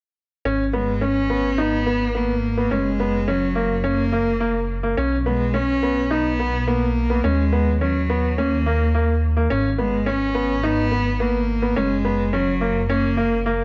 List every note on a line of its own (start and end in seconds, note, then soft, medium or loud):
0.45 2.69 G#1 medium
0.45 0.63 C#4 medium
0.73 1.04 G#3 medium
0.73 0.91 B3 medium
1.01 1.19 C#4 medium
1.01 1.62 C#4 medium
1.30 1.47 B3 medium
1.58 2.18 B3 medium
1.58 1.76 D#4 medium
1.86 2.04 B3 medium
2.15 2.74 A#3 medium
2.15 2.32 B3 medium
2.57 2.66 B3 medium
2.71 4.95 F#1 medium
2.71 3.30 G#3 medium
2.71 2.89 C#4 medium
3.00 3.17 B3 medium
3.28 3.87 F#3 medium
3.28 3.45 C#4 medium
3.55 3.73 A#3 medium
3.84 4.70 A#3 medium
3.84 4.02 C#4 medium
4.13 4.30 A#3 medium
4.40 4.58 A#3 medium
4.83 4.92 A#3 medium
4.97 7.21 B1 medium
4.97 5.15 C#4 medium
5.26 5.57 G#3 medium
5.26 5.44 B3 medium
5.54 5.72 C#4 medium
5.54 6.13 C#4 medium
5.83 6.00 B3 medium
6.11 6.69 B3 medium
6.11 6.28 D#4 medium
6.40 6.57 B3 medium
6.67 7.26 A#3 medium
6.67 6.85 B3 medium
7.10 7.19 B3 medium
7.24 9.48 D#2 medium
7.24 7.81 G#3 medium
7.24 7.42 C#4 medium
7.53 7.70 B3 medium
7.81 8.40 F#3 medium
7.81 7.99 C#4 medium
8.10 8.27 B3 medium
8.38 9.23 A#3 medium
8.38 8.56 C#4 medium
8.66 8.84 A#3 medium
8.95 9.12 A#3 medium
9.37 9.45 A#3 medium
9.50 11.75 G#1 medium
9.50 9.68 C#4 medium
9.78 10.10 G#3 medium
9.78 9.96 B3 medium
10.06 10.24 C#4 medium
10.06 10.66 C#4 medium
10.35 10.53 B3 medium
10.63 11.23 B3 medium
10.63 10.81 D#4 medium
10.92 11.09 B3 medium
11.20 11.80 A#3 medium
11.20 11.38 B3 medium
11.62 11.71 B3 medium
11.76 13.64 F#1 medium
11.76 12.35 G#3 medium
11.76 11.94 C#4 medium
12.05 12.22 B3 medium
12.33 12.90 F#3 medium
12.33 12.51 C#4 medium
12.61 12.79 A#3 medium
12.90 13.64 A#3 medium
12.90 13.07 C#4 medium
13.17 13.35 A#3 medium
13.46 13.64 A#3 medium